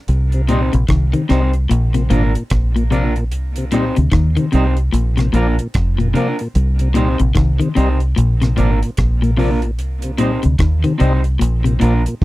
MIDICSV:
0, 0, Header, 1, 7, 480
1, 0, Start_track
1, 0, Key_signature, -3, "minor"
1, 0, Tempo, 808625
1, 53, Time_signature, 4, 2, 24, 8
1, 7267, End_track
2, 0, Start_track
2, 0, Title_t, "Clean electric guitar"
2, 0, Program_c, 0, 27
2, 286, Note_on_c, 0, 60, 81
2, 292, Note_on_c, 0, 63, 92
2, 295, Note_on_c, 0, 67, 82
2, 298, Note_on_c, 0, 72, 87
2, 410, Note_off_c, 0, 60, 0
2, 413, Note_off_c, 0, 63, 0
2, 414, Note_off_c, 0, 67, 0
2, 416, Note_off_c, 0, 72, 0
2, 765, Note_on_c, 0, 60, 88
2, 769, Note_on_c, 0, 63, 82
2, 773, Note_on_c, 0, 67, 85
2, 776, Note_on_c, 0, 72, 93
2, 889, Note_off_c, 0, 60, 0
2, 891, Note_off_c, 0, 63, 0
2, 893, Note_off_c, 0, 67, 0
2, 895, Note_off_c, 0, 72, 0
2, 1245, Note_on_c, 0, 58, 79
2, 1250, Note_on_c, 0, 62, 88
2, 1253, Note_on_c, 0, 65, 81
2, 1257, Note_on_c, 0, 70, 85
2, 1369, Note_off_c, 0, 58, 0
2, 1372, Note_off_c, 0, 62, 0
2, 1373, Note_off_c, 0, 65, 0
2, 1375, Note_off_c, 0, 70, 0
2, 1727, Note_on_c, 0, 58, 75
2, 1733, Note_on_c, 0, 62, 86
2, 1736, Note_on_c, 0, 65, 91
2, 1741, Note_on_c, 0, 70, 84
2, 1850, Note_off_c, 0, 58, 0
2, 1853, Note_off_c, 0, 62, 0
2, 1855, Note_off_c, 0, 65, 0
2, 1857, Note_off_c, 0, 70, 0
2, 2209, Note_on_c, 0, 60, 84
2, 2214, Note_on_c, 0, 63, 89
2, 2216, Note_on_c, 0, 67, 87
2, 2221, Note_on_c, 0, 72, 94
2, 2331, Note_off_c, 0, 60, 0
2, 2333, Note_off_c, 0, 63, 0
2, 2334, Note_off_c, 0, 67, 0
2, 2337, Note_off_c, 0, 72, 0
2, 2688, Note_on_c, 0, 60, 83
2, 2693, Note_on_c, 0, 63, 77
2, 2697, Note_on_c, 0, 67, 87
2, 2699, Note_on_c, 0, 72, 84
2, 2810, Note_off_c, 0, 60, 0
2, 2813, Note_off_c, 0, 63, 0
2, 2814, Note_off_c, 0, 67, 0
2, 2816, Note_off_c, 0, 72, 0
2, 3165, Note_on_c, 0, 58, 82
2, 3170, Note_on_c, 0, 62, 87
2, 3172, Note_on_c, 0, 65, 88
2, 3177, Note_on_c, 0, 70, 84
2, 3288, Note_off_c, 0, 58, 0
2, 3291, Note_off_c, 0, 62, 0
2, 3292, Note_off_c, 0, 65, 0
2, 3294, Note_off_c, 0, 70, 0
2, 3643, Note_on_c, 0, 58, 85
2, 3647, Note_on_c, 0, 62, 91
2, 3650, Note_on_c, 0, 65, 83
2, 3654, Note_on_c, 0, 70, 89
2, 3767, Note_off_c, 0, 58, 0
2, 3770, Note_off_c, 0, 62, 0
2, 3771, Note_off_c, 0, 65, 0
2, 3773, Note_off_c, 0, 70, 0
2, 4122, Note_on_c, 0, 60, 82
2, 4127, Note_on_c, 0, 63, 93
2, 4130, Note_on_c, 0, 67, 84
2, 4132, Note_on_c, 0, 72, 92
2, 4247, Note_off_c, 0, 60, 0
2, 4249, Note_off_c, 0, 63, 0
2, 4251, Note_off_c, 0, 67, 0
2, 4252, Note_off_c, 0, 72, 0
2, 4605, Note_on_c, 0, 60, 74
2, 4608, Note_on_c, 0, 63, 77
2, 4614, Note_on_c, 0, 67, 89
2, 4616, Note_on_c, 0, 72, 84
2, 4728, Note_off_c, 0, 60, 0
2, 4730, Note_off_c, 0, 63, 0
2, 4733, Note_off_c, 0, 67, 0
2, 4734, Note_off_c, 0, 72, 0
2, 5082, Note_on_c, 0, 58, 75
2, 5086, Note_on_c, 0, 62, 75
2, 5090, Note_on_c, 0, 65, 79
2, 5095, Note_on_c, 0, 70, 88
2, 5207, Note_off_c, 0, 58, 0
2, 5209, Note_off_c, 0, 62, 0
2, 5211, Note_off_c, 0, 65, 0
2, 5213, Note_off_c, 0, 70, 0
2, 5565, Note_on_c, 0, 58, 84
2, 5569, Note_on_c, 0, 62, 89
2, 5572, Note_on_c, 0, 65, 83
2, 5575, Note_on_c, 0, 70, 88
2, 5688, Note_off_c, 0, 58, 0
2, 5690, Note_off_c, 0, 62, 0
2, 5692, Note_off_c, 0, 65, 0
2, 5693, Note_off_c, 0, 70, 0
2, 6042, Note_on_c, 0, 60, 79
2, 6046, Note_on_c, 0, 63, 79
2, 6047, Note_on_c, 0, 67, 78
2, 6053, Note_on_c, 0, 72, 84
2, 6167, Note_off_c, 0, 60, 0
2, 6169, Note_off_c, 0, 63, 0
2, 6169, Note_off_c, 0, 67, 0
2, 6172, Note_off_c, 0, 72, 0
2, 6518, Note_on_c, 0, 60, 83
2, 6522, Note_on_c, 0, 63, 96
2, 6526, Note_on_c, 0, 67, 80
2, 6528, Note_on_c, 0, 72, 93
2, 6645, Note_off_c, 0, 60, 0
2, 6647, Note_off_c, 0, 63, 0
2, 6649, Note_off_c, 0, 67, 0
2, 6650, Note_off_c, 0, 72, 0
2, 7001, Note_on_c, 0, 58, 78
2, 7004, Note_on_c, 0, 62, 82
2, 7008, Note_on_c, 0, 65, 85
2, 7011, Note_on_c, 0, 70, 78
2, 7126, Note_off_c, 0, 58, 0
2, 7128, Note_off_c, 0, 62, 0
2, 7130, Note_off_c, 0, 65, 0
2, 7132, Note_off_c, 0, 70, 0
2, 7267, End_track
3, 0, Start_track
3, 0, Title_t, "Tonewheel organ"
3, 0, Program_c, 1, 16
3, 202, Note_on_c, 1, 48, 56
3, 247, Note_off_c, 1, 48, 0
3, 291, Note_on_c, 1, 55, 74
3, 292, Note_on_c, 1, 60, 66
3, 294, Note_on_c, 1, 63, 76
3, 365, Note_off_c, 1, 55, 0
3, 366, Note_off_c, 1, 60, 0
3, 367, Note_off_c, 1, 63, 0
3, 680, Note_on_c, 1, 48, 56
3, 726, Note_off_c, 1, 48, 0
3, 772, Note_on_c, 1, 55, 67
3, 775, Note_on_c, 1, 63, 78
3, 777, Note_on_c, 1, 60, 67
3, 846, Note_off_c, 1, 55, 0
3, 847, Note_off_c, 1, 63, 0
3, 848, Note_off_c, 1, 60, 0
3, 1157, Note_on_c, 1, 46, 58
3, 1204, Note_off_c, 1, 46, 0
3, 1247, Note_on_c, 1, 53, 74
3, 1247, Note_on_c, 1, 58, 66
3, 1250, Note_on_c, 1, 62, 78
3, 1323, Note_off_c, 1, 53, 0
3, 1323, Note_off_c, 1, 58, 0
3, 1325, Note_off_c, 1, 62, 0
3, 1397, Note_on_c, 1, 46, 60
3, 1444, Note_off_c, 1, 46, 0
3, 1637, Note_on_c, 1, 46, 60
3, 1684, Note_off_c, 1, 46, 0
3, 1730, Note_on_c, 1, 53, 70
3, 1731, Note_on_c, 1, 58, 66
3, 1733, Note_on_c, 1, 62, 77
3, 1805, Note_off_c, 1, 53, 0
3, 1805, Note_off_c, 1, 58, 0
3, 1806, Note_off_c, 1, 62, 0
3, 1879, Note_on_c, 1, 46, 57
3, 1925, Note_off_c, 1, 46, 0
3, 2123, Note_on_c, 1, 48, 60
3, 2167, Note_off_c, 1, 48, 0
3, 2216, Note_on_c, 1, 55, 76
3, 2217, Note_on_c, 1, 60, 64
3, 2219, Note_on_c, 1, 63, 81
3, 2287, Note_off_c, 1, 55, 0
3, 2288, Note_off_c, 1, 60, 0
3, 2289, Note_off_c, 1, 63, 0
3, 2605, Note_on_c, 1, 48, 57
3, 2648, Note_off_c, 1, 48, 0
3, 2698, Note_on_c, 1, 55, 74
3, 2698, Note_on_c, 1, 63, 78
3, 2699, Note_on_c, 1, 60, 65
3, 2768, Note_off_c, 1, 55, 0
3, 2768, Note_off_c, 1, 63, 0
3, 2769, Note_off_c, 1, 60, 0
3, 3086, Note_on_c, 1, 46, 60
3, 3128, Note_off_c, 1, 46, 0
3, 3180, Note_on_c, 1, 53, 73
3, 3180, Note_on_c, 1, 58, 68
3, 3181, Note_on_c, 1, 62, 85
3, 3249, Note_off_c, 1, 53, 0
3, 3249, Note_off_c, 1, 58, 0
3, 3249, Note_off_c, 1, 62, 0
3, 3326, Note_on_c, 1, 46, 61
3, 3368, Note_off_c, 1, 46, 0
3, 3568, Note_on_c, 1, 46, 61
3, 3609, Note_off_c, 1, 46, 0
3, 3657, Note_on_c, 1, 58, 68
3, 3659, Note_on_c, 1, 53, 73
3, 3661, Note_on_c, 1, 62, 79
3, 3728, Note_off_c, 1, 53, 0
3, 3728, Note_off_c, 1, 58, 0
3, 3730, Note_off_c, 1, 62, 0
3, 3804, Note_on_c, 1, 46, 55
3, 3847, Note_off_c, 1, 46, 0
3, 4044, Note_on_c, 1, 48, 58
3, 4087, Note_off_c, 1, 48, 0
3, 4131, Note_on_c, 1, 55, 71
3, 4134, Note_on_c, 1, 60, 67
3, 4137, Note_on_c, 1, 63, 84
3, 4204, Note_off_c, 1, 55, 0
3, 4206, Note_off_c, 1, 60, 0
3, 4207, Note_off_c, 1, 63, 0
3, 4517, Note_on_c, 1, 48, 60
3, 4563, Note_off_c, 1, 48, 0
3, 4609, Note_on_c, 1, 55, 72
3, 4613, Note_on_c, 1, 63, 82
3, 4614, Note_on_c, 1, 60, 67
3, 4683, Note_off_c, 1, 55, 0
3, 4685, Note_off_c, 1, 60, 0
3, 4685, Note_off_c, 1, 63, 0
3, 5001, Note_on_c, 1, 46, 58
3, 5045, Note_off_c, 1, 46, 0
3, 5091, Note_on_c, 1, 53, 78
3, 5094, Note_on_c, 1, 62, 80
3, 5095, Note_on_c, 1, 58, 66
3, 5164, Note_off_c, 1, 53, 0
3, 5166, Note_off_c, 1, 58, 0
3, 5166, Note_off_c, 1, 62, 0
3, 5242, Note_on_c, 1, 46, 61
3, 5286, Note_off_c, 1, 46, 0
3, 5480, Note_on_c, 1, 46, 60
3, 5525, Note_off_c, 1, 46, 0
3, 5565, Note_on_c, 1, 53, 77
3, 5569, Note_on_c, 1, 58, 68
3, 5570, Note_on_c, 1, 62, 81
3, 5641, Note_off_c, 1, 53, 0
3, 5643, Note_off_c, 1, 58, 0
3, 5644, Note_off_c, 1, 62, 0
3, 5716, Note_on_c, 1, 46, 59
3, 5763, Note_off_c, 1, 46, 0
3, 5958, Note_on_c, 1, 48, 56
3, 6004, Note_off_c, 1, 48, 0
3, 6048, Note_on_c, 1, 60, 65
3, 6051, Note_on_c, 1, 55, 69
3, 6052, Note_on_c, 1, 63, 82
3, 6123, Note_off_c, 1, 60, 0
3, 6124, Note_off_c, 1, 55, 0
3, 6125, Note_off_c, 1, 63, 0
3, 6443, Note_on_c, 1, 48, 57
3, 6486, Note_off_c, 1, 48, 0
3, 6534, Note_on_c, 1, 55, 72
3, 6535, Note_on_c, 1, 60, 68
3, 6535, Note_on_c, 1, 63, 81
3, 6606, Note_off_c, 1, 55, 0
3, 6606, Note_off_c, 1, 60, 0
3, 6606, Note_off_c, 1, 63, 0
3, 6924, Note_on_c, 1, 46, 56
3, 6967, Note_off_c, 1, 46, 0
3, 7013, Note_on_c, 1, 53, 73
3, 7018, Note_on_c, 1, 58, 68
3, 7018, Note_on_c, 1, 62, 76
3, 7085, Note_off_c, 1, 53, 0
3, 7088, Note_off_c, 1, 58, 0
3, 7088, Note_off_c, 1, 62, 0
3, 7170, Note_on_c, 1, 46, 58
3, 7210, Note_off_c, 1, 46, 0
3, 7267, End_track
4, 0, Start_track
4, 0, Title_t, "Clean electric guitar"
4, 0, Program_c, 2, 27
4, 290, Note_on_c, 2, 46, 76
4, 393, Note_off_c, 2, 46, 0
4, 434, Note_on_c, 2, 48, 70
4, 499, Note_off_c, 2, 48, 0
4, 526, Note_on_c, 2, 51, 76
4, 630, Note_off_c, 2, 51, 0
4, 673, Note_on_c, 2, 51, 69
4, 739, Note_off_c, 2, 51, 0
4, 767, Note_on_c, 2, 48, 71
4, 871, Note_off_c, 2, 48, 0
4, 1006, Note_on_c, 2, 46, 80
4, 1110, Note_off_c, 2, 46, 0
4, 1154, Note_on_c, 2, 48, 70
4, 1219, Note_off_c, 2, 48, 0
4, 1248, Note_on_c, 2, 46, 77
4, 1351, Note_off_c, 2, 46, 0
4, 1637, Note_on_c, 2, 46, 60
4, 1701, Note_off_c, 2, 46, 0
4, 1727, Note_on_c, 2, 48, 73
4, 1830, Note_off_c, 2, 48, 0
4, 2208, Note_on_c, 2, 46, 83
4, 2311, Note_off_c, 2, 46, 0
4, 2355, Note_on_c, 2, 48, 67
4, 2419, Note_off_c, 2, 48, 0
4, 2443, Note_on_c, 2, 51, 78
4, 2548, Note_off_c, 2, 51, 0
4, 2592, Note_on_c, 2, 51, 75
4, 2658, Note_off_c, 2, 51, 0
4, 2683, Note_on_c, 2, 48, 68
4, 2788, Note_off_c, 2, 48, 0
4, 2924, Note_on_c, 2, 46, 84
4, 3028, Note_off_c, 2, 46, 0
4, 3071, Note_on_c, 2, 48, 71
4, 3137, Note_off_c, 2, 48, 0
4, 3162, Note_on_c, 2, 46, 79
4, 3267, Note_off_c, 2, 46, 0
4, 3552, Note_on_c, 2, 46, 69
4, 3618, Note_off_c, 2, 46, 0
4, 3643, Note_on_c, 2, 48, 77
4, 3748, Note_off_c, 2, 48, 0
4, 4121, Note_on_c, 2, 46, 77
4, 4226, Note_off_c, 2, 46, 0
4, 4272, Note_on_c, 2, 48, 68
4, 4337, Note_off_c, 2, 48, 0
4, 4361, Note_on_c, 2, 51, 79
4, 4466, Note_off_c, 2, 51, 0
4, 4508, Note_on_c, 2, 51, 70
4, 4575, Note_off_c, 2, 51, 0
4, 4602, Note_on_c, 2, 48, 73
4, 4707, Note_off_c, 2, 48, 0
4, 4846, Note_on_c, 2, 46, 79
4, 4949, Note_off_c, 2, 46, 0
4, 4995, Note_on_c, 2, 48, 75
4, 5060, Note_off_c, 2, 48, 0
4, 5085, Note_on_c, 2, 46, 76
4, 5189, Note_off_c, 2, 46, 0
4, 5474, Note_on_c, 2, 46, 61
4, 5539, Note_off_c, 2, 46, 0
4, 5563, Note_on_c, 2, 48, 72
4, 5668, Note_off_c, 2, 48, 0
4, 6046, Note_on_c, 2, 46, 83
4, 6149, Note_off_c, 2, 46, 0
4, 6191, Note_on_c, 2, 48, 66
4, 6257, Note_off_c, 2, 48, 0
4, 6290, Note_on_c, 2, 51, 73
4, 6392, Note_off_c, 2, 51, 0
4, 6435, Note_on_c, 2, 51, 74
4, 6499, Note_off_c, 2, 51, 0
4, 6527, Note_on_c, 2, 48, 71
4, 6630, Note_off_c, 2, 48, 0
4, 6763, Note_on_c, 2, 46, 78
4, 6868, Note_off_c, 2, 46, 0
4, 6911, Note_on_c, 2, 48, 70
4, 6977, Note_off_c, 2, 48, 0
4, 7003, Note_on_c, 2, 46, 80
4, 7107, Note_off_c, 2, 46, 0
4, 7267, End_track
5, 0, Start_track
5, 0, Title_t, "Fingered electric bass"
5, 0, Program_c, 3, 33
5, 52, Note_on_c, 3, 36, 95
5, 420, Note_off_c, 3, 36, 0
5, 442, Note_on_c, 3, 34, 84
5, 527, Note_off_c, 3, 34, 0
5, 530, Note_on_c, 3, 36, 89
5, 672, Note_off_c, 3, 36, 0
5, 774, Note_on_c, 3, 36, 88
5, 1000, Note_off_c, 3, 36, 0
5, 1015, Note_on_c, 3, 34, 96
5, 1240, Note_off_c, 3, 34, 0
5, 1252, Note_on_c, 3, 32, 88
5, 1392, Note_off_c, 3, 32, 0
5, 1495, Note_on_c, 3, 34, 95
5, 1973, Note_off_c, 3, 34, 0
5, 1973, Note_on_c, 3, 36, 101
5, 2340, Note_off_c, 3, 36, 0
5, 2363, Note_on_c, 3, 38, 87
5, 2446, Note_off_c, 3, 38, 0
5, 2449, Note_on_c, 3, 39, 86
5, 2590, Note_off_c, 3, 39, 0
5, 2694, Note_on_c, 3, 36, 83
5, 2920, Note_off_c, 3, 36, 0
5, 2931, Note_on_c, 3, 34, 99
5, 3158, Note_off_c, 3, 34, 0
5, 3169, Note_on_c, 3, 34, 94
5, 3310, Note_off_c, 3, 34, 0
5, 3415, Note_on_c, 3, 29, 92
5, 3640, Note_off_c, 3, 29, 0
5, 3891, Note_on_c, 3, 36, 107
5, 4258, Note_off_c, 3, 36, 0
5, 4277, Note_on_c, 3, 34, 79
5, 4365, Note_off_c, 3, 34, 0
5, 4370, Note_on_c, 3, 36, 86
5, 4510, Note_off_c, 3, 36, 0
5, 4614, Note_on_c, 3, 36, 91
5, 4839, Note_off_c, 3, 36, 0
5, 4855, Note_on_c, 3, 34, 100
5, 5080, Note_off_c, 3, 34, 0
5, 5096, Note_on_c, 3, 32, 87
5, 5234, Note_off_c, 3, 32, 0
5, 5336, Note_on_c, 3, 34, 91
5, 5816, Note_off_c, 3, 34, 0
5, 5816, Note_on_c, 3, 36, 97
5, 6181, Note_off_c, 3, 36, 0
5, 6206, Note_on_c, 3, 38, 84
5, 6288, Note_off_c, 3, 38, 0
5, 6291, Note_on_c, 3, 39, 89
5, 6431, Note_off_c, 3, 39, 0
5, 6536, Note_on_c, 3, 36, 82
5, 6760, Note_off_c, 3, 36, 0
5, 6776, Note_on_c, 3, 34, 98
5, 7001, Note_off_c, 3, 34, 0
5, 7017, Note_on_c, 3, 34, 90
5, 7154, Note_off_c, 3, 34, 0
5, 7267, End_track
6, 0, Start_track
6, 0, Title_t, "Muted clean electric guitar strokes"
6, 1879, Note_on_c, 9, 29, 38
6, 1939, Note_off_c, 9, 29, 0
6, 3794, Note_on_c, 9, 29, 42
6, 3854, Note_off_c, 9, 29, 0
6, 5710, Note_on_c, 9, 29, 46
6, 5770, Note_off_c, 9, 29, 0
6, 7267, End_track
7, 0, Start_track
7, 0, Title_t, "Drums"
7, 48, Note_on_c, 9, 42, 70
7, 107, Note_off_c, 9, 42, 0
7, 191, Note_on_c, 9, 42, 50
7, 250, Note_off_c, 9, 42, 0
7, 288, Note_on_c, 9, 42, 76
7, 348, Note_off_c, 9, 42, 0
7, 434, Note_on_c, 9, 42, 47
7, 493, Note_off_c, 9, 42, 0
7, 525, Note_on_c, 9, 42, 82
7, 527, Note_on_c, 9, 36, 104
7, 535, Note_on_c, 9, 37, 115
7, 585, Note_off_c, 9, 42, 0
7, 587, Note_off_c, 9, 36, 0
7, 594, Note_off_c, 9, 37, 0
7, 674, Note_on_c, 9, 42, 50
7, 734, Note_off_c, 9, 42, 0
7, 770, Note_on_c, 9, 42, 78
7, 774, Note_on_c, 9, 37, 67
7, 829, Note_off_c, 9, 42, 0
7, 833, Note_off_c, 9, 37, 0
7, 911, Note_on_c, 9, 42, 46
7, 970, Note_off_c, 9, 42, 0
7, 1014, Note_on_c, 9, 42, 92
7, 1073, Note_off_c, 9, 42, 0
7, 1153, Note_on_c, 9, 42, 49
7, 1213, Note_off_c, 9, 42, 0
7, 1249, Note_on_c, 9, 42, 70
7, 1309, Note_off_c, 9, 42, 0
7, 1397, Note_on_c, 9, 42, 51
7, 1456, Note_off_c, 9, 42, 0
7, 1485, Note_on_c, 9, 42, 91
7, 1492, Note_on_c, 9, 36, 111
7, 1492, Note_on_c, 9, 37, 103
7, 1544, Note_off_c, 9, 42, 0
7, 1551, Note_off_c, 9, 36, 0
7, 1552, Note_off_c, 9, 37, 0
7, 1640, Note_on_c, 9, 42, 49
7, 1700, Note_off_c, 9, 42, 0
7, 1733, Note_on_c, 9, 42, 59
7, 1792, Note_off_c, 9, 42, 0
7, 1875, Note_on_c, 9, 42, 51
7, 1935, Note_off_c, 9, 42, 0
7, 1968, Note_on_c, 9, 42, 73
7, 2028, Note_off_c, 9, 42, 0
7, 2111, Note_on_c, 9, 42, 52
7, 2171, Note_off_c, 9, 42, 0
7, 2206, Note_on_c, 9, 42, 72
7, 2265, Note_off_c, 9, 42, 0
7, 2352, Note_on_c, 9, 42, 50
7, 2412, Note_off_c, 9, 42, 0
7, 2443, Note_on_c, 9, 42, 77
7, 2446, Note_on_c, 9, 36, 108
7, 2452, Note_on_c, 9, 37, 113
7, 2502, Note_off_c, 9, 42, 0
7, 2506, Note_off_c, 9, 36, 0
7, 2512, Note_off_c, 9, 37, 0
7, 2592, Note_on_c, 9, 42, 52
7, 2652, Note_off_c, 9, 42, 0
7, 2686, Note_on_c, 9, 42, 77
7, 2746, Note_off_c, 9, 42, 0
7, 2829, Note_on_c, 9, 42, 47
7, 2889, Note_off_c, 9, 42, 0
7, 2930, Note_on_c, 9, 42, 90
7, 2989, Note_off_c, 9, 42, 0
7, 3073, Note_on_c, 9, 42, 49
7, 3081, Note_on_c, 9, 37, 62
7, 3132, Note_off_c, 9, 42, 0
7, 3140, Note_off_c, 9, 37, 0
7, 3168, Note_on_c, 9, 42, 72
7, 3227, Note_off_c, 9, 42, 0
7, 3317, Note_on_c, 9, 42, 52
7, 3376, Note_off_c, 9, 42, 0
7, 3408, Note_on_c, 9, 42, 91
7, 3413, Note_on_c, 9, 36, 111
7, 3415, Note_on_c, 9, 37, 102
7, 3467, Note_off_c, 9, 42, 0
7, 3472, Note_off_c, 9, 36, 0
7, 3474, Note_off_c, 9, 37, 0
7, 3561, Note_on_c, 9, 42, 46
7, 3620, Note_off_c, 9, 42, 0
7, 3653, Note_on_c, 9, 42, 59
7, 3712, Note_off_c, 9, 42, 0
7, 3793, Note_on_c, 9, 42, 53
7, 3852, Note_off_c, 9, 42, 0
7, 3889, Note_on_c, 9, 42, 69
7, 3948, Note_off_c, 9, 42, 0
7, 4031, Note_on_c, 9, 42, 53
7, 4090, Note_off_c, 9, 42, 0
7, 4126, Note_on_c, 9, 42, 75
7, 4185, Note_off_c, 9, 42, 0
7, 4271, Note_on_c, 9, 42, 50
7, 4330, Note_off_c, 9, 42, 0
7, 4365, Note_on_c, 9, 42, 76
7, 4367, Note_on_c, 9, 36, 113
7, 4375, Note_on_c, 9, 37, 108
7, 4425, Note_off_c, 9, 42, 0
7, 4426, Note_off_c, 9, 36, 0
7, 4434, Note_off_c, 9, 37, 0
7, 4515, Note_on_c, 9, 42, 53
7, 4574, Note_off_c, 9, 42, 0
7, 4610, Note_on_c, 9, 42, 77
7, 4669, Note_off_c, 9, 42, 0
7, 4751, Note_on_c, 9, 42, 47
7, 4810, Note_off_c, 9, 42, 0
7, 4853, Note_on_c, 9, 42, 95
7, 4913, Note_off_c, 9, 42, 0
7, 4996, Note_on_c, 9, 42, 50
7, 5004, Note_on_c, 9, 37, 65
7, 5055, Note_off_c, 9, 42, 0
7, 5064, Note_off_c, 9, 37, 0
7, 5090, Note_on_c, 9, 42, 72
7, 5150, Note_off_c, 9, 42, 0
7, 5239, Note_on_c, 9, 42, 55
7, 5298, Note_off_c, 9, 42, 0
7, 5326, Note_on_c, 9, 42, 89
7, 5333, Note_on_c, 9, 36, 115
7, 5334, Note_on_c, 9, 37, 106
7, 5386, Note_off_c, 9, 42, 0
7, 5392, Note_off_c, 9, 36, 0
7, 5393, Note_off_c, 9, 37, 0
7, 5482, Note_on_c, 9, 42, 46
7, 5542, Note_off_c, 9, 42, 0
7, 5574, Note_on_c, 9, 46, 41
7, 5633, Note_off_c, 9, 46, 0
7, 5711, Note_on_c, 9, 42, 50
7, 5770, Note_off_c, 9, 42, 0
7, 5809, Note_on_c, 9, 42, 66
7, 5869, Note_off_c, 9, 42, 0
7, 5949, Note_on_c, 9, 42, 53
7, 6008, Note_off_c, 9, 42, 0
7, 6045, Note_on_c, 9, 42, 76
7, 6104, Note_off_c, 9, 42, 0
7, 6190, Note_on_c, 9, 42, 46
7, 6250, Note_off_c, 9, 42, 0
7, 6285, Note_on_c, 9, 42, 80
7, 6287, Note_on_c, 9, 36, 109
7, 6294, Note_on_c, 9, 37, 119
7, 6344, Note_off_c, 9, 42, 0
7, 6346, Note_off_c, 9, 36, 0
7, 6353, Note_off_c, 9, 37, 0
7, 6435, Note_on_c, 9, 42, 51
7, 6494, Note_off_c, 9, 42, 0
7, 6530, Note_on_c, 9, 42, 82
7, 6589, Note_off_c, 9, 42, 0
7, 6673, Note_on_c, 9, 42, 48
7, 6732, Note_off_c, 9, 42, 0
7, 6774, Note_on_c, 9, 42, 94
7, 6834, Note_off_c, 9, 42, 0
7, 6918, Note_on_c, 9, 42, 49
7, 6977, Note_off_c, 9, 42, 0
7, 7011, Note_on_c, 9, 42, 71
7, 7071, Note_off_c, 9, 42, 0
7, 7159, Note_on_c, 9, 42, 53
7, 7218, Note_off_c, 9, 42, 0
7, 7267, End_track
0, 0, End_of_file